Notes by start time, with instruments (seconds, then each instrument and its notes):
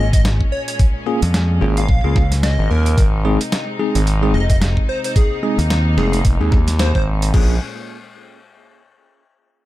Already playing: fingered electric bass G#1, string section A#2 G#3 C#4
0.13 digital synth lead D#5, kick, closed hi-hat
0.25 snare, closed hi-hat
0.41 kick
0.52 digital synth lead C#5
0.68 digital synth lead C#5, closed hi-hat
0.79 kick, closed hi-hat
1.06 tine electric piano A#3 C#4 F4 G#4
1.22 fingered electric bass F2, closed hi-hat
1.34 snare, closed hi-hat
1.61 analog synth bass G#1, tine electric piano A#3 C#4 F4 G#4
1.77 digital synth lead F5, closed hi-hat
1.89 fingered electric bass A#1, kick
2.04 fingered electric bass C#2, tine electric piano A#3 C#4 F4 G#4
2.16 kick, snare
2.32 snare, closed hi-hat
2.43 digital synth lead D#5, snare, closed hi-hat
2.59 analog synth bass G#1
2.70 analog synth bass D#2, digital synth lead A#4
2.86 closed hi-hat
2.98 analog synth bass G#1, string section C3 G#3 D#4, kick, closed hi-hat
3.25 tine electric piano G#3 C4 D#4 G#4
3.41 closed hi-hat
3.52 snare, closed hi-hat
3.79 tine electric piano G#3 C4 D#4 G#4
3.95 analog synth bass G#1, closed hi-hat
4.07 closed hi-hat
4.23 tine electric piano G#3 C4 D#4 G#4
4.34 fingered electric bass F1, digital synth lead D#5
4.50 digital synth lead D#5, kick, closed hi-hat
4.62 snare, closed hi-hat
4.77 kick
4.89 digital synth lead C5
5.04 digital synth lead C5, closed hi-hat
5.16 string section A#3, digital synth lead G#4, kick, closed hi-hat
5.43 tine electric piano G#3 C4 D#4 G#4
5.59 fingered electric bass D#2, closed hi-hat
5.70 snare, closed hi-hat
5.97 analog synth bass F1, tine electric piano G#3 C4 D#4 G#4, digital synth lead G#4, snare
6.13 closed hi-hat
6.25 analog synth bass F1, kick, closed hi-hat
6.41 analog synth bass D#2, tine electric piano G#3 C4 D#4 G#4
6.52 kick, snare
6.68 snare, closed hi-hat
6.79 digital synth lead C5, snare, closed hi-hat
6.95 analog synth bass G#1, digital synth lead C5, kick
7.22 closed hi-hat
7.34 analog synth bass A#1, string section A#2 G#3 C#4, tine electric piano A#3 C#4 F4 G#4, kick, crash